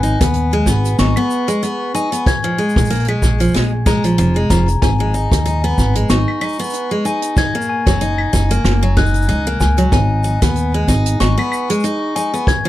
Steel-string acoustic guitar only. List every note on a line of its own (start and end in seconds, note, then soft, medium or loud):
0.03 0.19 D#4 medium
0.21 0.51 B3 medium
0.53 0.66 G#3 medium
0.67 0.98 B3 medium
0.99 1.15 D#4 medium
1.17 1.47 B3 medium
1.48 1.61 G#3 medium
1.63 1.93 B3 medium
1.95 2.11 D#4 medium
2.12 2.26 B3 medium
2.44 2.57 F3 medium
2.58 2.89 G#3 medium
2.90 3.07 A#3 medium
3.08 3.38 G#3 medium
3.40 3.53 F3 medium
3.54 3.70 G#3 medium
3.86 4.02 G#3 medium
4.04 4.17 F3 medium
4.18 4.35 F3 loud
4.36 4.49 G#3 medium
4.50 4.66 F3 medium
5.00 5.13 G#3 medium
5.14 5.44 D#4 medium
5.46 5.62 D#4 medium
5.64 5.94 B3 medium
5.96 6.08 G#3 medium
6.10 6.40 D#4 medium
6.41 6.57 D#4 medium
6.59 6.90 B3 medium
6.91 7.04 G#3 medium
7.05 7.36 D#4 medium
7.37 7.53 D#4 medium
7.55 7.85 A#3 medium
7.87 8.00 F#3 medium
8.01 8.32 D#4 medium
8.33 8.49 D#4 medium
8.51 8.81 A#3 medium
8.83 8.95 F#3 medium
8.97 9.27 D#4 medium
9.29 9.45 D#4 medium
9.47 9.77 A#3 medium
9.78 9.91 F#3 medium
9.92 10.23 D#4 medium
10.24 10.40 D#4 medium
10.42 10.72 B3 medium
10.74 10.87 G#3 medium
10.88 11.19 D#4 medium
11.20 11.36 D#4 medium
11.38 11.68 B3 medium
11.70 11.83 G#3 medium
11.84 12.14 D#4 medium
12.16 12.32 D#4 medium
12.34 12.48 B3 medium
12.65 12.69 F3 medium